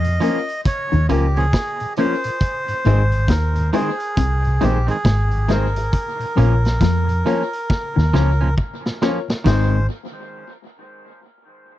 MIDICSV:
0, 0, Header, 1, 8, 480
1, 0, Start_track
1, 0, Key_signature, -4, "major"
1, 0, Tempo, 881057
1, 1311, Time_signature, 4, 2, 24, 8
1, 6422, End_track
2, 0, Start_track
2, 0, Title_t, "Melodica"
2, 0, Program_c, 0, 22
2, 0, Note_on_c, 0, 75, 102
2, 332, Note_off_c, 0, 75, 0
2, 363, Note_on_c, 0, 73, 111
2, 581, Note_off_c, 0, 73, 0
2, 602, Note_on_c, 0, 67, 86
2, 748, Note_on_c, 0, 68, 101
2, 749, Note_off_c, 0, 67, 0
2, 1053, Note_off_c, 0, 68, 0
2, 1082, Note_on_c, 0, 72, 112
2, 1799, Note_on_c, 0, 70, 85
2, 1818, Note_off_c, 0, 72, 0
2, 2018, Note_off_c, 0, 70, 0
2, 2037, Note_on_c, 0, 68, 89
2, 2521, Note_on_c, 0, 67, 90
2, 2528, Note_off_c, 0, 68, 0
2, 2654, Note_off_c, 0, 67, 0
2, 2669, Note_on_c, 0, 68, 94
2, 3004, Note_on_c, 0, 70, 95
2, 3005, Note_off_c, 0, 68, 0
2, 4656, Note_off_c, 0, 70, 0
2, 5155, Note_on_c, 0, 72, 84
2, 5377, Note_off_c, 0, 72, 0
2, 6422, End_track
3, 0, Start_track
3, 0, Title_t, "Upright piano"
3, 0, Program_c, 1, 0
3, 116, Note_on_c, 1, 61, 92
3, 123, Note_on_c, 1, 65, 88
3, 123, Note_on_c, 1, 70, 117
3, 204, Note_off_c, 1, 61, 0
3, 207, Note_off_c, 1, 65, 0
3, 207, Note_off_c, 1, 70, 0
3, 597, Note_on_c, 1, 61, 88
3, 601, Note_on_c, 1, 65, 85
3, 605, Note_on_c, 1, 70, 91
3, 684, Note_off_c, 1, 61, 0
3, 686, Note_off_c, 1, 65, 0
3, 688, Note_off_c, 1, 70, 0
3, 1076, Note_on_c, 1, 61, 95
3, 1079, Note_on_c, 1, 65, 94
3, 1085, Note_on_c, 1, 70, 109
3, 1163, Note_off_c, 1, 61, 0
3, 1165, Note_off_c, 1, 65, 0
3, 1168, Note_off_c, 1, 70, 0
3, 1557, Note_on_c, 1, 63, 86
3, 1558, Note_on_c, 1, 68, 86
3, 1562, Note_on_c, 1, 72, 107
3, 1644, Note_off_c, 1, 63, 0
3, 1644, Note_off_c, 1, 68, 0
3, 1646, Note_off_c, 1, 72, 0
3, 2035, Note_on_c, 1, 63, 94
3, 2040, Note_on_c, 1, 68, 93
3, 2041, Note_on_c, 1, 72, 107
3, 2123, Note_off_c, 1, 63, 0
3, 2125, Note_off_c, 1, 68, 0
3, 2126, Note_off_c, 1, 72, 0
3, 2515, Note_on_c, 1, 63, 85
3, 2518, Note_on_c, 1, 68, 85
3, 2520, Note_on_c, 1, 72, 99
3, 2603, Note_off_c, 1, 63, 0
3, 2604, Note_off_c, 1, 68, 0
3, 2605, Note_off_c, 1, 72, 0
3, 2992, Note_on_c, 1, 63, 91
3, 2997, Note_on_c, 1, 68, 84
3, 3000, Note_on_c, 1, 72, 100
3, 3081, Note_off_c, 1, 63, 0
3, 3084, Note_off_c, 1, 68, 0
3, 3085, Note_off_c, 1, 72, 0
3, 3143, Note_on_c, 1, 68, 28
3, 3145, Note_on_c, 1, 72, 30
3, 3178, Note_off_c, 1, 68, 0
3, 3178, Note_off_c, 1, 72, 0
3, 3473, Note_on_c, 1, 65, 101
3, 3476, Note_on_c, 1, 70, 83
3, 3479, Note_on_c, 1, 73, 92
3, 3562, Note_off_c, 1, 65, 0
3, 3563, Note_off_c, 1, 70, 0
3, 3564, Note_off_c, 1, 73, 0
3, 3950, Note_on_c, 1, 65, 94
3, 3953, Note_on_c, 1, 70, 88
3, 3957, Note_on_c, 1, 73, 109
3, 4040, Note_off_c, 1, 65, 0
3, 4042, Note_off_c, 1, 70, 0
3, 4044, Note_off_c, 1, 73, 0
3, 4431, Note_on_c, 1, 65, 90
3, 4437, Note_on_c, 1, 70, 90
3, 4439, Note_on_c, 1, 73, 110
3, 4521, Note_off_c, 1, 65, 0
3, 4524, Note_off_c, 1, 70, 0
3, 4525, Note_off_c, 1, 73, 0
3, 4912, Note_on_c, 1, 65, 97
3, 4916, Note_on_c, 1, 70, 92
3, 4918, Note_on_c, 1, 73, 116
3, 5001, Note_off_c, 1, 65, 0
3, 5003, Note_off_c, 1, 70, 0
3, 5004, Note_off_c, 1, 73, 0
3, 5064, Note_on_c, 1, 70, 24
3, 5064, Note_on_c, 1, 73, 28
3, 5098, Note_off_c, 1, 70, 0
3, 5098, Note_off_c, 1, 73, 0
3, 5154, Note_on_c, 1, 63, 89
3, 5156, Note_on_c, 1, 68, 79
3, 5159, Note_on_c, 1, 72, 94
3, 5341, Note_off_c, 1, 63, 0
3, 5343, Note_off_c, 1, 68, 0
3, 5344, Note_off_c, 1, 72, 0
3, 6422, End_track
4, 0, Start_track
4, 0, Title_t, "Clean electric guitar"
4, 0, Program_c, 2, 27
4, 111, Note_on_c, 2, 53, 83
4, 115, Note_on_c, 2, 58, 95
4, 118, Note_on_c, 2, 61, 102
4, 200, Note_off_c, 2, 53, 0
4, 202, Note_off_c, 2, 58, 0
4, 204, Note_off_c, 2, 61, 0
4, 595, Note_on_c, 2, 53, 86
4, 597, Note_on_c, 2, 58, 98
4, 601, Note_on_c, 2, 61, 99
4, 682, Note_off_c, 2, 53, 0
4, 683, Note_off_c, 2, 58, 0
4, 685, Note_off_c, 2, 61, 0
4, 747, Note_on_c, 2, 61, 68
4, 749, Note_on_c, 2, 58, 58
4, 753, Note_on_c, 2, 53, 54
4, 786, Note_off_c, 2, 61, 0
4, 787, Note_off_c, 2, 58, 0
4, 789, Note_off_c, 2, 53, 0
4, 1078, Note_on_c, 2, 53, 88
4, 1082, Note_on_c, 2, 58, 92
4, 1085, Note_on_c, 2, 61, 112
4, 1163, Note_off_c, 2, 53, 0
4, 1165, Note_off_c, 2, 58, 0
4, 1167, Note_off_c, 2, 61, 0
4, 1558, Note_on_c, 2, 51, 71
4, 1559, Note_on_c, 2, 56, 77
4, 1563, Note_on_c, 2, 60, 92
4, 1643, Note_off_c, 2, 51, 0
4, 1643, Note_off_c, 2, 56, 0
4, 1646, Note_off_c, 2, 60, 0
4, 2033, Note_on_c, 2, 51, 104
4, 2035, Note_on_c, 2, 56, 107
4, 2038, Note_on_c, 2, 60, 99
4, 2120, Note_off_c, 2, 51, 0
4, 2122, Note_off_c, 2, 56, 0
4, 2123, Note_off_c, 2, 60, 0
4, 2511, Note_on_c, 2, 51, 90
4, 2513, Note_on_c, 2, 56, 98
4, 2517, Note_on_c, 2, 60, 91
4, 2600, Note_off_c, 2, 51, 0
4, 2600, Note_off_c, 2, 56, 0
4, 2602, Note_off_c, 2, 60, 0
4, 2652, Note_on_c, 2, 60, 66
4, 2658, Note_on_c, 2, 51, 59
4, 2659, Note_on_c, 2, 56, 61
4, 2699, Note_off_c, 2, 60, 0
4, 2701, Note_off_c, 2, 51, 0
4, 2702, Note_off_c, 2, 56, 0
4, 2988, Note_on_c, 2, 51, 82
4, 2993, Note_on_c, 2, 56, 100
4, 2996, Note_on_c, 2, 60, 81
4, 3078, Note_off_c, 2, 51, 0
4, 3080, Note_off_c, 2, 56, 0
4, 3082, Note_off_c, 2, 60, 0
4, 3471, Note_on_c, 2, 53, 81
4, 3473, Note_on_c, 2, 58, 95
4, 3476, Note_on_c, 2, 61, 100
4, 3560, Note_off_c, 2, 53, 0
4, 3561, Note_off_c, 2, 58, 0
4, 3562, Note_off_c, 2, 61, 0
4, 3954, Note_on_c, 2, 53, 92
4, 3959, Note_on_c, 2, 58, 102
4, 3962, Note_on_c, 2, 61, 98
4, 4041, Note_off_c, 2, 53, 0
4, 4044, Note_off_c, 2, 58, 0
4, 4045, Note_off_c, 2, 61, 0
4, 4432, Note_on_c, 2, 53, 90
4, 4434, Note_on_c, 2, 58, 93
4, 4439, Note_on_c, 2, 61, 109
4, 4520, Note_off_c, 2, 53, 0
4, 4521, Note_off_c, 2, 58, 0
4, 4524, Note_off_c, 2, 61, 0
4, 4580, Note_on_c, 2, 61, 69
4, 4585, Note_on_c, 2, 58, 60
4, 4587, Note_on_c, 2, 53, 59
4, 4623, Note_off_c, 2, 61, 0
4, 4625, Note_off_c, 2, 58, 0
4, 4626, Note_off_c, 2, 53, 0
4, 4914, Note_on_c, 2, 53, 81
4, 4918, Note_on_c, 2, 58, 80
4, 4922, Note_on_c, 2, 61, 94
4, 5001, Note_off_c, 2, 53, 0
4, 5003, Note_off_c, 2, 58, 0
4, 5005, Note_off_c, 2, 61, 0
4, 5145, Note_on_c, 2, 51, 99
4, 5153, Note_on_c, 2, 56, 104
4, 5156, Note_on_c, 2, 60, 86
4, 5314, Note_off_c, 2, 51, 0
4, 5319, Note_off_c, 2, 56, 0
4, 5320, Note_off_c, 2, 60, 0
4, 6422, End_track
5, 0, Start_track
5, 0, Title_t, "Tonewheel organ"
5, 0, Program_c, 3, 16
5, 27, Note_on_c, 3, 46, 61
5, 55, Note_off_c, 3, 46, 0
5, 120, Note_on_c, 3, 53, 80
5, 122, Note_on_c, 3, 58, 70
5, 124, Note_on_c, 3, 61, 87
5, 166, Note_off_c, 3, 53, 0
5, 167, Note_off_c, 3, 58, 0
5, 168, Note_off_c, 3, 61, 0
5, 505, Note_on_c, 3, 46, 65
5, 534, Note_off_c, 3, 46, 0
5, 598, Note_on_c, 3, 58, 71
5, 598, Note_on_c, 3, 61, 84
5, 599, Note_on_c, 3, 53, 83
5, 645, Note_off_c, 3, 58, 0
5, 645, Note_off_c, 3, 61, 0
5, 646, Note_off_c, 3, 53, 0
5, 747, Note_on_c, 3, 46, 60
5, 775, Note_off_c, 3, 46, 0
5, 986, Note_on_c, 3, 46, 65
5, 1014, Note_off_c, 3, 46, 0
5, 1075, Note_on_c, 3, 53, 78
5, 1079, Note_on_c, 3, 58, 73
5, 1080, Note_on_c, 3, 61, 87
5, 1124, Note_off_c, 3, 53, 0
5, 1126, Note_off_c, 3, 58, 0
5, 1126, Note_off_c, 3, 61, 0
5, 1225, Note_on_c, 3, 46, 57
5, 1254, Note_off_c, 3, 46, 0
5, 1463, Note_on_c, 3, 44, 66
5, 1492, Note_off_c, 3, 44, 0
5, 1551, Note_on_c, 3, 51, 74
5, 1551, Note_on_c, 3, 56, 66
5, 1556, Note_on_c, 3, 60, 80
5, 1601, Note_off_c, 3, 56, 0
5, 1602, Note_off_c, 3, 51, 0
5, 1604, Note_off_c, 3, 60, 0
5, 1700, Note_on_c, 3, 44, 57
5, 1731, Note_off_c, 3, 44, 0
5, 1946, Note_on_c, 3, 44, 59
5, 1974, Note_off_c, 3, 44, 0
5, 2031, Note_on_c, 3, 51, 74
5, 2032, Note_on_c, 3, 56, 68
5, 2034, Note_on_c, 3, 60, 83
5, 2082, Note_off_c, 3, 51, 0
5, 2082, Note_off_c, 3, 56, 0
5, 2083, Note_off_c, 3, 60, 0
5, 2422, Note_on_c, 3, 44, 65
5, 2452, Note_off_c, 3, 44, 0
5, 2514, Note_on_c, 3, 56, 74
5, 2515, Note_on_c, 3, 51, 76
5, 2515, Note_on_c, 3, 60, 85
5, 2563, Note_off_c, 3, 56, 0
5, 2563, Note_off_c, 3, 60, 0
5, 2564, Note_off_c, 3, 51, 0
5, 2663, Note_on_c, 3, 44, 59
5, 2692, Note_off_c, 3, 44, 0
5, 2897, Note_on_c, 3, 44, 58
5, 2929, Note_off_c, 3, 44, 0
5, 2988, Note_on_c, 3, 51, 84
5, 2988, Note_on_c, 3, 56, 73
5, 2992, Note_on_c, 3, 60, 90
5, 3040, Note_off_c, 3, 51, 0
5, 3040, Note_off_c, 3, 56, 0
5, 3042, Note_off_c, 3, 60, 0
5, 3133, Note_on_c, 3, 44, 58
5, 3167, Note_off_c, 3, 44, 0
5, 3376, Note_on_c, 3, 46, 66
5, 3409, Note_off_c, 3, 46, 0
5, 3462, Note_on_c, 3, 53, 70
5, 3464, Note_on_c, 3, 58, 70
5, 3467, Note_on_c, 3, 61, 84
5, 3517, Note_off_c, 3, 53, 0
5, 3518, Note_off_c, 3, 58, 0
5, 3519, Note_off_c, 3, 61, 0
5, 3617, Note_on_c, 3, 46, 57
5, 3649, Note_off_c, 3, 46, 0
5, 3854, Note_on_c, 3, 46, 63
5, 3888, Note_off_c, 3, 46, 0
5, 3947, Note_on_c, 3, 53, 80
5, 3950, Note_on_c, 3, 58, 76
5, 3951, Note_on_c, 3, 61, 76
5, 3999, Note_off_c, 3, 53, 0
5, 4001, Note_off_c, 3, 58, 0
5, 4002, Note_off_c, 3, 61, 0
5, 4341, Note_on_c, 3, 46, 67
5, 4371, Note_off_c, 3, 46, 0
5, 4431, Note_on_c, 3, 58, 69
5, 4432, Note_on_c, 3, 53, 79
5, 4434, Note_on_c, 3, 61, 91
5, 4482, Note_off_c, 3, 53, 0
5, 4482, Note_off_c, 3, 58, 0
5, 4483, Note_off_c, 3, 61, 0
5, 4583, Note_on_c, 3, 46, 54
5, 4612, Note_off_c, 3, 46, 0
5, 4825, Note_on_c, 3, 46, 65
5, 4854, Note_off_c, 3, 46, 0
5, 4912, Note_on_c, 3, 53, 78
5, 4914, Note_on_c, 3, 58, 74
5, 4917, Note_on_c, 3, 61, 80
5, 4962, Note_off_c, 3, 53, 0
5, 4963, Note_off_c, 3, 58, 0
5, 4965, Note_off_c, 3, 61, 0
5, 5058, Note_on_c, 3, 46, 55
5, 5090, Note_off_c, 3, 46, 0
5, 5148, Note_on_c, 3, 51, 92
5, 5150, Note_on_c, 3, 56, 87
5, 5153, Note_on_c, 3, 60, 105
5, 5338, Note_off_c, 3, 51, 0
5, 5339, Note_off_c, 3, 56, 0
5, 5341, Note_off_c, 3, 60, 0
5, 6422, End_track
6, 0, Start_track
6, 0, Title_t, "Clean electric guitar"
6, 0, Program_c, 4, 27
6, 501, Note_on_c, 4, 51, 81
6, 555, Note_off_c, 4, 51, 0
6, 594, Note_on_c, 4, 49, 90
6, 737, Note_off_c, 4, 49, 0
6, 1556, Note_on_c, 4, 44, 91
6, 1698, Note_off_c, 4, 44, 0
6, 1790, Note_on_c, 4, 51, 80
6, 1934, Note_off_c, 4, 51, 0
6, 2272, Note_on_c, 4, 48, 75
6, 2415, Note_off_c, 4, 48, 0
6, 2511, Note_on_c, 4, 46, 90
6, 2600, Note_off_c, 4, 46, 0
6, 2749, Note_on_c, 4, 44, 85
6, 2894, Note_off_c, 4, 44, 0
6, 3468, Note_on_c, 4, 46, 93
6, 3613, Note_off_c, 4, 46, 0
6, 3712, Note_on_c, 4, 53, 82
6, 3855, Note_off_c, 4, 53, 0
6, 4337, Note_on_c, 4, 51, 80
6, 4393, Note_off_c, 4, 51, 0
6, 4433, Note_on_c, 4, 49, 86
6, 4576, Note_off_c, 4, 49, 0
6, 6422, End_track
7, 0, Start_track
7, 0, Title_t, "Fingered electric bass"
7, 0, Program_c, 5, 33
7, 0, Note_on_c, 5, 41, 100
7, 97, Note_off_c, 5, 41, 0
7, 507, Note_on_c, 5, 39, 92
7, 589, Note_off_c, 5, 39, 0
7, 600, Note_on_c, 5, 37, 88
7, 820, Note_off_c, 5, 37, 0
7, 1560, Note_on_c, 5, 32, 107
7, 1780, Note_off_c, 5, 32, 0
7, 1791, Note_on_c, 5, 39, 99
7, 2015, Note_off_c, 5, 39, 0
7, 2278, Note_on_c, 5, 36, 108
7, 2499, Note_off_c, 5, 36, 0
7, 2522, Note_on_c, 5, 34, 93
7, 2655, Note_off_c, 5, 34, 0
7, 2754, Note_on_c, 5, 32, 95
7, 3211, Note_off_c, 5, 32, 0
7, 3477, Note_on_c, 5, 34, 97
7, 3698, Note_off_c, 5, 34, 0
7, 3713, Note_on_c, 5, 41, 94
7, 3936, Note_off_c, 5, 41, 0
7, 4345, Note_on_c, 5, 39, 95
7, 4428, Note_off_c, 5, 39, 0
7, 4432, Note_on_c, 5, 37, 93
7, 4656, Note_off_c, 5, 37, 0
7, 5155, Note_on_c, 5, 32, 100
7, 5376, Note_off_c, 5, 32, 0
7, 6422, End_track
8, 0, Start_track
8, 0, Title_t, "Drums"
8, 23, Note_on_c, 9, 42, 64
8, 77, Note_off_c, 9, 42, 0
8, 116, Note_on_c, 9, 42, 79
8, 170, Note_off_c, 9, 42, 0
8, 265, Note_on_c, 9, 42, 60
8, 319, Note_off_c, 9, 42, 0
8, 357, Note_on_c, 9, 36, 121
8, 357, Note_on_c, 9, 42, 94
8, 411, Note_off_c, 9, 36, 0
8, 411, Note_off_c, 9, 42, 0
8, 504, Note_on_c, 9, 42, 37
8, 559, Note_off_c, 9, 42, 0
8, 594, Note_on_c, 9, 42, 83
8, 649, Note_off_c, 9, 42, 0
8, 743, Note_on_c, 9, 42, 50
8, 797, Note_off_c, 9, 42, 0
8, 833, Note_on_c, 9, 42, 73
8, 835, Note_on_c, 9, 36, 100
8, 838, Note_on_c, 9, 38, 122
8, 887, Note_off_c, 9, 42, 0
8, 889, Note_off_c, 9, 36, 0
8, 892, Note_off_c, 9, 38, 0
8, 979, Note_on_c, 9, 42, 50
8, 1034, Note_off_c, 9, 42, 0
8, 1070, Note_on_c, 9, 42, 65
8, 1124, Note_off_c, 9, 42, 0
8, 1219, Note_on_c, 9, 42, 66
8, 1274, Note_off_c, 9, 42, 0
8, 1308, Note_on_c, 9, 42, 80
8, 1312, Note_on_c, 9, 36, 92
8, 1362, Note_off_c, 9, 42, 0
8, 1366, Note_off_c, 9, 36, 0
8, 1459, Note_on_c, 9, 42, 59
8, 1514, Note_off_c, 9, 42, 0
8, 1553, Note_on_c, 9, 42, 79
8, 1607, Note_off_c, 9, 42, 0
8, 1698, Note_on_c, 9, 42, 56
8, 1753, Note_off_c, 9, 42, 0
8, 1788, Note_on_c, 9, 36, 116
8, 1792, Note_on_c, 9, 42, 90
8, 1797, Note_on_c, 9, 38, 114
8, 1843, Note_off_c, 9, 36, 0
8, 1846, Note_off_c, 9, 42, 0
8, 1851, Note_off_c, 9, 38, 0
8, 1937, Note_on_c, 9, 42, 60
8, 1991, Note_off_c, 9, 42, 0
8, 2033, Note_on_c, 9, 42, 83
8, 2087, Note_off_c, 9, 42, 0
8, 2177, Note_on_c, 9, 42, 57
8, 2232, Note_off_c, 9, 42, 0
8, 2273, Note_on_c, 9, 36, 119
8, 2274, Note_on_c, 9, 42, 91
8, 2327, Note_off_c, 9, 36, 0
8, 2328, Note_off_c, 9, 42, 0
8, 2420, Note_on_c, 9, 42, 38
8, 2475, Note_off_c, 9, 42, 0
8, 2512, Note_on_c, 9, 42, 80
8, 2566, Note_off_c, 9, 42, 0
8, 2658, Note_on_c, 9, 42, 52
8, 2713, Note_off_c, 9, 42, 0
8, 2749, Note_on_c, 9, 42, 90
8, 2751, Note_on_c, 9, 36, 102
8, 2755, Note_on_c, 9, 38, 103
8, 2804, Note_off_c, 9, 42, 0
8, 2805, Note_off_c, 9, 36, 0
8, 2809, Note_off_c, 9, 38, 0
8, 2894, Note_on_c, 9, 42, 49
8, 2948, Note_off_c, 9, 42, 0
8, 2988, Note_on_c, 9, 42, 71
8, 2993, Note_on_c, 9, 38, 66
8, 3042, Note_off_c, 9, 42, 0
8, 3047, Note_off_c, 9, 38, 0
8, 3138, Note_on_c, 9, 42, 67
8, 3192, Note_off_c, 9, 42, 0
8, 3230, Note_on_c, 9, 42, 76
8, 3231, Note_on_c, 9, 36, 97
8, 3284, Note_off_c, 9, 42, 0
8, 3285, Note_off_c, 9, 36, 0
8, 3379, Note_on_c, 9, 42, 62
8, 3434, Note_off_c, 9, 42, 0
8, 3473, Note_on_c, 9, 42, 79
8, 3528, Note_off_c, 9, 42, 0
8, 3622, Note_on_c, 9, 42, 55
8, 3630, Note_on_c, 9, 38, 75
8, 3676, Note_off_c, 9, 42, 0
8, 3684, Note_off_c, 9, 38, 0
8, 3709, Note_on_c, 9, 36, 119
8, 3712, Note_on_c, 9, 42, 91
8, 3717, Note_on_c, 9, 38, 108
8, 3763, Note_off_c, 9, 36, 0
8, 3767, Note_off_c, 9, 42, 0
8, 3772, Note_off_c, 9, 38, 0
8, 3860, Note_on_c, 9, 42, 61
8, 3915, Note_off_c, 9, 42, 0
8, 3957, Note_on_c, 9, 42, 74
8, 4011, Note_off_c, 9, 42, 0
8, 4103, Note_on_c, 9, 42, 58
8, 4158, Note_off_c, 9, 42, 0
8, 4194, Note_on_c, 9, 36, 127
8, 4200, Note_on_c, 9, 38, 64
8, 4249, Note_off_c, 9, 36, 0
8, 4255, Note_off_c, 9, 38, 0
8, 4348, Note_on_c, 9, 38, 58
8, 4403, Note_off_c, 9, 38, 0
8, 4439, Note_on_c, 9, 38, 75
8, 4493, Note_off_c, 9, 38, 0
8, 4672, Note_on_c, 9, 36, 102
8, 4727, Note_off_c, 9, 36, 0
8, 4827, Note_on_c, 9, 38, 85
8, 4881, Note_off_c, 9, 38, 0
8, 4917, Note_on_c, 9, 38, 120
8, 4971, Note_off_c, 9, 38, 0
8, 5066, Note_on_c, 9, 38, 103
8, 5120, Note_off_c, 9, 38, 0
8, 5153, Note_on_c, 9, 36, 100
8, 5153, Note_on_c, 9, 55, 90
8, 5157, Note_on_c, 9, 38, 106
8, 5207, Note_off_c, 9, 36, 0
8, 5208, Note_off_c, 9, 55, 0
8, 5211, Note_off_c, 9, 38, 0
8, 6422, End_track
0, 0, End_of_file